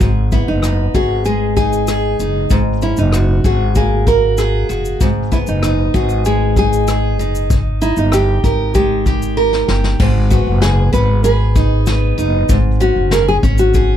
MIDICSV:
0, 0, Header, 1, 5, 480
1, 0, Start_track
1, 0, Key_signature, 5, "minor"
1, 0, Tempo, 624350
1, 8, Time_signature, 4, 2, 24, 8
1, 10739, End_track
2, 0, Start_track
2, 0, Title_t, "Nylon-string guitar"
2, 0, Program_c, 0, 24
2, 248, Note_on_c, 0, 64, 65
2, 360, Note_off_c, 0, 64, 0
2, 371, Note_on_c, 0, 63, 80
2, 729, Note_on_c, 0, 66, 80
2, 741, Note_off_c, 0, 63, 0
2, 961, Note_off_c, 0, 66, 0
2, 964, Note_on_c, 0, 68, 90
2, 1189, Note_off_c, 0, 68, 0
2, 1204, Note_on_c, 0, 68, 97
2, 1656, Note_off_c, 0, 68, 0
2, 2176, Note_on_c, 0, 64, 72
2, 2296, Note_off_c, 0, 64, 0
2, 2296, Note_on_c, 0, 63, 74
2, 2656, Note_on_c, 0, 66, 79
2, 2663, Note_off_c, 0, 63, 0
2, 2893, Note_off_c, 0, 66, 0
2, 2896, Note_on_c, 0, 68, 88
2, 3131, Note_off_c, 0, 68, 0
2, 3134, Note_on_c, 0, 70, 109
2, 3581, Note_off_c, 0, 70, 0
2, 4094, Note_on_c, 0, 64, 76
2, 4132, Note_off_c, 0, 64, 0
2, 4217, Note_on_c, 0, 63, 85
2, 4570, Note_on_c, 0, 66, 88
2, 4584, Note_off_c, 0, 63, 0
2, 4810, Note_off_c, 0, 66, 0
2, 4813, Note_on_c, 0, 68, 96
2, 5035, Note_off_c, 0, 68, 0
2, 5063, Note_on_c, 0, 68, 92
2, 5505, Note_off_c, 0, 68, 0
2, 6011, Note_on_c, 0, 64, 90
2, 6133, Note_off_c, 0, 64, 0
2, 6139, Note_on_c, 0, 63, 84
2, 6253, Note_on_c, 0, 67, 97
2, 6257, Note_off_c, 0, 63, 0
2, 6716, Note_off_c, 0, 67, 0
2, 6726, Note_on_c, 0, 67, 88
2, 7416, Note_off_c, 0, 67, 0
2, 7928, Note_on_c, 0, 66, 84
2, 8151, Note_off_c, 0, 66, 0
2, 8162, Note_on_c, 0, 68, 88
2, 8388, Note_off_c, 0, 68, 0
2, 8407, Note_on_c, 0, 71, 101
2, 8631, Note_off_c, 0, 71, 0
2, 8641, Note_on_c, 0, 71, 102
2, 9333, Note_off_c, 0, 71, 0
2, 9851, Note_on_c, 0, 66, 88
2, 10089, Note_on_c, 0, 70, 104
2, 10096, Note_off_c, 0, 66, 0
2, 10210, Note_off_c, 0, 70, 0
2, 10213, Note_on_c, 0, 68, 97
2, 10277, Note_off_c, 0, 68, 0
2, 10450, Note_on_c, 0, 66, 85
2, 10739, Note_off_c, 0, 66, 0
2, 10739, End_track
3, 0, Start_track
3, 0, Title_t, "Steel-string acoustic guitar"
3, 0, Program_c, 1, 25
3, 0, Note_on_c, 1, 68, 51
3, 6, Note_on_c, 1, 44, 69
3, 248, Note_on_c, 1, 59, 55
3, 487, Note_on_c, 1, 63, 50
3, 724, Note_off_c, 1, 68, 0
3, 727, Note_on_c, 1, 68, 60
3, 967, Note_on_c, 1, 56, 66
3, 1200, Note_off_c, 1, 63, 0
3, 1209, Note_on_c, 1, 63, 57
3, 1438, Note_off_c, 1, 68, 0
3, 1447, Note_on_c, 1, 68, 65
3, 1682, Note_off_c, 1, 63, 0
3, 1691, Note_on_c, 1, 63, 48
3, 1920, Note_off_c, 1, 44, 0
3, 1929, Note_on_c, 1, 44, 75
3, 1976, Note_off_c, 1, 56, 0
3, 1976, Note_off_c, 1, 68, 0
3, 1977, Note_off_c, 1, 59, 0
3, 1978, Note_off_c, 1, 63, 0
3, 2170, Note_on_c, 1, 61, 56
3, 2409, Note_on_c, 1, 66, 54
3, 2646, Note_on_c, 1, 68, 54
3, 2887, Note_on_c, 1, 58, 63
3, 3118, Note_off_c, 1, 66, 0
3, 3127, Note_on_c, 1, 66, 55
3, 3363, Note_off_c, 1, 68, 0
3, 3366, Note_on_c, 1, 68, 68
3, 3597, Note_off_c, 1, 66, 0
3, 3607, Note_on_c, 1, 66, 50
3, 3843, Note_off_c, 1, 44, 0
3, 3852, Note_on_c, 1, 44, 79
3, 3896, Note_off_c, 1, 58, 0
3, 3896, Note_off_c, 1, 66, 0
3, 3898, Note_off_c, 1, 61, 0
3, 4088, Note_on_c, 1, 59, 58
3, 4326, Note_on_c, 1, 63, 61
3, 4563, Note_off_c, 1, 68, 0
3, 4566, Note_on_c, 1, 68, 66
3, 4810, Note_on_c, 1, 56, 59
3, 5049, Note_off_c, 1, 63, 0
3, 5052, Note_on_c, 1, 63, 56
3, 5278, Note_off_c, 1, 68, 0
3, 5287, Note_on_c, 1, 68, 67
3, 5527, Note_off_c, 1, 63, 0
3, 5530, Note_on_c, 1, 63, 61
3, 5771, Note_off_c, 1, 44, 0
3, 5816, Note_off_c, 1, 59, 0
3, 5816, Note_off_c, 1, 68, 0
3, 5818, Note_off_c, 1, 56, 0
3, 6008, Note_off_c, 1, 63, 0
3, 6008, Note_on_c, 1, 63, 58
3, 6250, Note_on_c, 1, 67, 61
3, 6488, Note_on_c, 1, 70, 61
3, 6725, Note_on_c, 1, 56, 68
3, 6962, Note_off_c, 1, 67, 0
3, 6971, Note_on_c, 1, 67, 56
3, 7195, Note_off_c, 1, 70, 0
3, 7204, Note_on_c, 1, 70, 72
3, 7438, Note_off_c, 1, 67, 0
3, 7448, Note_on_c, 1, 67, 55
3, 7686, Note_on_c, 1, 44, 82
3, 7734, Note_off_c, 1, 70, 0
3, 7736, Note_off_c, 1, 67, 0
3, 7919, Note_off_c, 1, 63, 0
3, 7922, Note_on_c, 1, 59, 62
3, 8161, Note_on_c, 1, 68, 62
3, 8391, Note_off_c, 1, 59, 0
3, 8400, Note_on_c, 1, 59, 61
3, 8635, Note_off_c, 1, 68, 0
3, 8644, Note_on_c, 1, 68, 72
3, 8885, Note_on_c, 1, 63, 59
3, 9116, Note_off_c, 1, 59, 0
3, 9126, Note_on_c, 1, 59, 66
3, 9353, Note_off_c, 1, 63, 0
3, 9362, Note_on_c, 1, 63, 51
3, 9416, Note_off_c, 1, 56, 0
3, 9598, Note_off_c, 1, 44, 0
3, 9607, Note_on_c, 1, 44, 80
3, 9653, Note_off_c, 1, 63, 0
3, 9653, Note_off_c, 1, 68, 0
3, 9654, Note_off_c, 1, 59, 0
3, 9844, Note_on_c, 1, 61, 58
3, 10083, Note_on_c, 1, 68, 61
3, 10316, Note_off_c, 1, 61, 0
3, 10326, Note_on_c, 1, 61, 58
3, 10566, Note_off_c, 1, 68, 0
3, 10569, Note_on_c, 1, 68, 66
3, 10739, Note_off_c, 1, 44, 0
3, 10739, Note_off_c, 1, 61, 0
3, 10739, Note_off_c, 1, 68, 0
3, 10739, End_track
4, 0, Start_track
4, 0, Title_t, "Upright bass"
4, 0, Program_c, 2, 32
4, 6, Note_on_c, 2, 32, 99
4, 338, Note_off_c, 2, 32, 0
4, 369, Note_on_c, 2, 30, 80
4, 700, Note_off_c, 2, 30, 0
4, 726, Note_on_c, 2, 32, 82
4, 1657, Note_off_c, 2, 32, 0
4, 1688, Note_on_c, 2, 30, 76
4, 1909, Note_off_c, 2, 30, 0
4, 1926, Note_on_c, 2, 32, 87
4, 2259, Note_off_c, 2, 32, 0
4, 2289, Note_on_c, 2, 30, 90
4, 2621, Note_off_c, 2, 30, 0
4, 2648, Note_on_c, 2, 32, 92
4, 3578, Note_off_c, 2, 32, 0
4, 3611, Note_on_c, 2, 30, 73
4, 3831, Note_off_c, 2, 30, 0
4, 3851, Note_on_c, 2, 32, 84
4, 4181, Note_off_c, 2, 32, 0
4, 4212, Note_on_c, 2, 30, 84
4, 4542, Note_off_c, 2, 30, 0
4, 4569, Note_on_c, 2, 32, 90
4, 5526, Note_off_c, 2, 32, 0
4, 5526, Note_on_c, 2, 30, 85
4, 5768, Note_off_c, 2, 30, 0
4, 5768, Note_on_c, 2, 32, 96
4, 6100, Note_off_c, 2, 32, 0
4, 6127, Note_on_c, 2, 31, 93
4, 6459, Note_off_c, 2, 31, 0
4, 6487, Note_on_c, 2, 32, 87
4, 7417, Note_off_c, 2, 32, 0
4, 7445, Note_on_c, 2, 31, 81
4, 7667, Note_off_c, 2, 31, 0
4, 7686, Note_on_c, 2, 32, 110
4, 8018, Note_off_c, 2, 32, 0
4, 8048, Note_on_c, 2, 30, 95
4, 8379, Note_off_c, 2, 30, 0
4, 8407, Note_on_c, 2, 32, 94
4, 9336, Note_off_c, 2, 32, 0
4, 9367, Note_on_c, 2, 30, 82
4, 9588, Note_off_c, 2, 30, 0
4, 9604, Note_on_c, 2, 32, 95
4, 9936, Note_off_c, 2, 32, 0
4, 9965, Note_on_c, 2, 30, 91
4, 10297, Note_off_c, 2, 30, 0
4, 10325, Note_on_c, 2, 32, 103
4, 10739, Note_off_c, 2, 32, 0
4, 10739, End_track
5, 0, Start_track
5, 0, Title_t, "Drums"
5, 5, Note_on_c, 9, 36, 99
5, 5, Note_on_c, 9, 82, 63
5, 81, Note_off_c, 9, 82, 0
5, 82, Note_off_c, 9, 36, 0
5, 243, Note_on_c, 9, 82, 42
5, 247, Note_on_c, 9, 36, 72
5, 320, Note_off_c, 9, 82, 0
5, 324, Note_off_c, 9, 36, 0
5, 480, Note_on_c, 9, 37, 97
5, 489, Note_on_c, 9, 82, 69
5, 557, Note_off_c, 9, 37, 0
5, 566, Note_off_c, 9, 82, 0
5, 726, Note_on_c, 9, 36, 77
5, 729, Note_on_c, 9, 82, 36
5, 803, Note_off_c, 9, 36, 0
5, 806, Note_off_c, 9, 82, 0
5, 961, Note_on_c, 9, 82, 52
5, 1037, Note_off_c, 9, 82, 0
5, 1205, Note_on_c, 9, 36, 76
5, 1205, Note_on_c, 9, 82, 41
5, 1282, Note_off_c, 9, 36, 0
5, 1282, Note_off_c, 9, 82, 0
5, 1329, Note_on_c, 9, 82, 52
5, 1406, Note_off_c, 9, 82, 0
5, 1440, Note_on_c, 9, 82, 74
5, 1446, Note_on_c, 9, 37, 105
5, 1517, Note_off_c, 9, 82, 0
5, 1523, Note_off_c, 9, 37, 0
5, 1688, Note_on_c, 9, 37, 31
5, 1688, Note_on_c, 9, 82, 43
5, 1765, Note_off_c, 9, 37, 0
5, 1765, Note_off_c, 9, 82, 0
5, 1921, Note_on_c, 9, 82, 62
5, 1926, Note_on_c, 9, 36, 105
5, 1998, Note_off_c, 9, 82, 0
5, 2003, Note_off_c, 9, 36, 0
5, 2166, Note_on_c, 9, 82, 39
5, 2243, Note_off_c, 9, 82, 0
5, 2282, Note_on_c, 9, 82, 54
5, 2359, Note_off_c, 9, 82, 0
5, 2402, Note_on_c, 9, 37, 107
5, 2411, Note_on_c, 9, 82, 66
5, 2479, Note_off_c, 9, 37, 0
5, 2487, Note_off_c, 9, 82, 0
5, 2648, Note_on_c, 9, 36, 86
5, 2651, Note_on_c, 9, 82, 41
5, 2725, Note_off_c, 9, 36, 0
5, 2728, Note_off_c, 9, 82, 0
5, 2885, Note_on_c, 9, 82, 52
5, 2890, Note_on_c, 9, 36, 75
5, 2961, Note_off_c, 9, 82, 0
5, 2966, Note_off_c, 9, 36, 0
5, 3128, Note_on_c, 9, 36, 97
5, 3130, Note_on_c, 9, 82, 42
5, 3205, Note_off_c, 9, 36, 0
5, 3207, Note_off_c, 9, 82, 0
5, 3364, Note_on_c, 9, 82, 72
5, 3370, Note_on_c, 9, 37, 87
5, 3441, Note_off_c, 9, 82, 0
5, 3447, Note_off_c, 9, 37, 0
5, 3613, Note_on_c, 9, 37, 34
5, 3613, Note_on_c, 9, 82, 44
5, 3690, Note_off_c, 9, 37, 0
5, 3690, Note_off_c, 9, 82, 0
5, 3730, Note_on_c, 9, 82, 54
5, 3807, Note_off_c, 9, 82, 0
5, 3849, Note_on_c, 9, 36, 112
5, 3849, Note_on_c, 9, 82, 69
5, 3926, Note_off_c, 9, 36, 0
5, 3926, Note_off_c, 9, 82, 0
5, 4089, Note_on_c, 9, 82, 44
5, 4091, Note_on_c, 9, 36, 73
5, 4166, Note_off_c, 9, 82, 0
5, 4168, Note_off_c, 9, 36, 0
5, 4204, Note_on_c, 9, 82, 55
5, 4281, Note_off_c, 9, 82, 0
5, 4325, Note_on_c, 9, 37, 108
5, 4334, Note_on_c, 9, 82, 68
5, 4402, Note_off_c, 9, 37, 0
5, 4410, Note_off_c, 9, 82, 0
5, 4569, Note_on_c, 9, 36, 75
5, 4574, Note_on_c, 9, 82, 44
5, 4646, Note_off_c, 9, 36, 0
5, 4650, Note_off_c, 9, 82, 0
5, 4683, Note_on_c, 9, 82, 46
5, 4760, Note_off_c, 9, 82, 0
5, 4806, Note_on_c, 9, 82, 63
5, 4882, Note_off_c, 9, 82, 0
5, 5047, Note_on_c, 9, 36, 96
5, 5048, Note_on_c, 9, 82, 40
5, 5124, Note_off_c, 9, 36, 0
5, 5125, Note_off_c, 9, 82, 0
5, 5173, Note_on_c, 9, 82, 57
5, 5250, Note_off_c, 9, 82, 0
5, 5285, Note_on_c, 9, 82, 77
5, 5291, Note_on_c, 9, 37, 108
5, 5362, Note_off_c, 9, 82, 0
5, 5368, Note_off_c, 9, 37, 0
5, 5536, Note_on_c, 9, 37, 33
5, 5537, Note_on_c, 9, 82, 46
5, 5613, Note_off_c, 9, 37, 0
5, 5613, Note_off_c, 9, 82, 0
5, 5651, Note_on_c, 9, 82, 53
5, 5728, Note_off_c, 9, 82, 0
5, 5768, Note_on_c, 9, 36, 118
5, 5770, Note_on_c, 9, 82, 67
5, 5845, Note_off_c, 9, 36, 0
5, 5846, Note_off_c, 9, 82, 0
5, 6010, Note_on_c, 9, 82, 48
5, 6087, Note_off_c, 9, 82, 0
5, 6125, Note_on_c, 9, 82, 55
5, 6202, Note_off_c, 9, 82, 0
5, 6242, Note_on_c, 9, 37, 110
5, 6250, Note_on_c, 9, 82, 76
5, 6319, Note_off_c, 9, 37, 0
5, 6327, Note_off_c, 9, 82, 0
5, 6487, Note_on_c, 9, 36, 82
5, 6492, Note_on_c, 9, 82, 43
5, 6564, Note_off_c, 9, 36, 0
5, 6569, Note_off_c, 9, 82, 0
5, 6722, Note_on_c, 9, 82, 59
5, 6727, Note_on_c, 9, 36, 86
5, 6799, Note_off_c, 9, 82, 0
5, 6804, Note_off_c, 9, 36, 0
5, 6966, Note_on_c, 9, 36, 89
5, 6967, Note_on_c, 9, 82, 44
5, 7042, Note_off_c, 9, 36, 0
5, 7044, Note_off_c, 9, 82, 0
5, 7090, Note_on_c, 9, 82, 56
5, 7167, Note_off_c, 9, 82, 0
5, 7325, Note_on_c, 9, 38, 55
5, 7402, Note_off_c, 9, 38, 0
5, 7444, Note_on_c, 9, 38, 83
5, 7521, Note_off_c, 9, 38, 0
5, 7565, Note_on_c, 9, 38, 86
5, 7642, Note_off_c, 9, 38, 0
5, 7686, Note_on_c, 9, 49, 93
5, 7687, Note_on_c, 9, 36, 113
5, 7763, Note_off_c, 9, 36, 0
5, 7763, Note_off_c, 9, 49, 0
5, 7924, Note_on_c, 9, 82, 48
5, 7928, Note_on_c, 9, 36, 84
5, 8001, Note_off_c, 9, 82, 0
5, 8005, Note_off_c, 9, 36, 0
5, 8162, Note_on_c, 9, 38, 108
5, 8171, Note_on_c, 9, 82, 68
5, 8239, Note_off_c, 9, 38, 0
5, 8248, Note_off_c, 9, 82, 0
5, 8406, Note_on_c, 9, 36, 87
5, 8410, Note_on_c, 9, 82, 44
5, 8483, Note_off_c, 9, 36, 0
5, 8487, Note_off_c, 9, 82, 0
5, 8643, Note_on_c, 9, 82, 64
5, 8720, Note_off_c, 9, 82, 0
5, 8884, Note_on_c, 9, 36, 99
5, 8885, Note_on_c, 9, 82, 47
5, 8961, Note_off_c, 9, 36, 0
5, 8962, Note_off_c, 9, 82, 0
5, 9120, Note_on_c, 9, 82, 75
5, 9126, Note_on_c, 9, 38, 100
5, 9197, Note_off_c, 9, 82, 0
5, 9203, Note_off_c, 9, 38, 0
5, 9369, Note_on_c, 9, 82, 45
5, 9446, Note_off_c, 9, 82, 0
5, 9602, Note_on_c, 9, 82, 73
5, 9605, Note_on_c, 9, 36, 111
5, 9679, Note_off_c, 9, 82, 0
5, 9681, Note_off_c, 9, 36, 0
5, 9846, Note_on_c, 9, 82, 46
5, 9923, Note_off_c, 9, 82, 0
5, 10080, Note_on_c, 9, 38, 123
5, 10089, Note_on_c, 9, 82, 80
5, 10157, Note_off_c, 9, 38, 0
5, 10166, Note_off_c, 9, 82, 0
5, 10326, Note_on_c, 9, 36, 88
5, 10331, Note_on_c, 9, 82, 47
5, 10403, Note_off_c, 9, 36, 0
5, 10408, Note_off_c, 9, 82, 0
5, 10440, Note_on_c, 9, 82, 55
5, 10517, Note_off_c, 9, 82, 0
5, 10563, Note_on_c, 9, 82, 58
5, 10567, Note_on_c, 9, 36, 86
5, 10640, Note_off_c, 9, 82, 0
5, 10644, Note_off_c, 9, 36, 0
5, 10739, End_track
0, 0, End_of_file